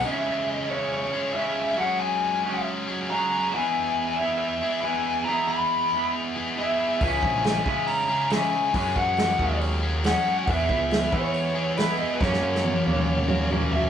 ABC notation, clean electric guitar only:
X:1
M:4/4
L:1/8
Q:1/4=138
K:C#dor
V:1 name="Clean electric guitar" clef=bass
[C,G,CE]3 [C,G,CE]3 [C,G,CE]2 | [F,G,CF]3 [F,G,CF]3 [F,G,CF]2 | [E,G,B,E]3 [E,G,B,E]3 [E,G,B,E]2 | [E,G,B,E]3 [E,G,B,E]3 [E,G,B,E]2 |
[C,G,CE]3 [C,G,CE]3 [C,G,CE]2 | [F,G,CF]3 [F,G,CF]3 [F,G,CF]2 | [E,G,B,E]3 [E,G,B,E]3 [E,G,B,E]2 | [F,,C,F,A,C]3 [F,,C,F,A,C]3 [F,,C,F,A,C]2 |]